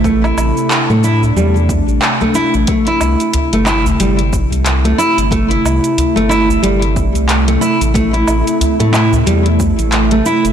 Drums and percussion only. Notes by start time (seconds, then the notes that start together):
0.04 kick, shaker
0.24 low woodblock, shaker
0.38 low woodblock, shaker
0.57 shaker
0.71 clap, shaker
0.90 shaker
1.04 shaker
1.23 udu, shaker
1.37 shaker
1.56 shaker
1.69 kick, udu, shaker
1.88 shaker
2.02 clap, shaker
2.21 udu, shaker
2.35 shaker
2.54 shaker
2.67 kick, closed hi-hat, shaker
2.87 closed hi-hat
3.01 low woodblock, shaker
3.20 closed hi-hat, shaker
3.34 closed hi-hat, udu, shaker
3.53 closed hi-hat
3.66 clap, low woodblock, shaker
3.86 udu, shaker
4.00 closed hi-hat, shaker
4.19 closed hi-hat
4.33 kick, shaker
4.52 closed hi-hat, shaker
4.66 clap, closed hi-hat, shaker
4.85 closed hi-hat
4.99 shaker
5.18 closed hi-hat, shaker
5.32 kick, closed hi-hat, shaker
5.51 closed hi-hat
5.66 low woodblock, shaker
5.84 closed hi-hat, shaker
5.98 closed hi-hat, udu, shaker
6.17 closed hi-hat
6.31 low woodblock, shaker
6.48 udu, shaker
6.64 closed hi-hat, shaker
6.82 closed hi-hat
6.96 kick, shaker
7.15 closed hi-hat, shaker
7.29 clap, closed hi-hat, shaker
7.48 closed hi-hat
7.62 shaker
7.81 closed hi-hat, shaker
7.95 kick, closed hi-hat, shaker
8.14 closed hi-hat
8.28 low woodblock, shaker
8.47 closed hi-hat, shaker
8.61 closed hi-hat, udu, shaker
8.80 closed hi-hat
8.94 clap, low woodblock, shaker
9.13 udu, shaker
9.27 closed hi-hat, shaker
9.46 closed hi-hat
9.60 kick, shaker
9.79 closed hi-hat, shaker
9.92 clap, closed hi-hat, shaker
10.11 closed hi-hat
10.26 shaker
10.45 closed hi-hat, shaker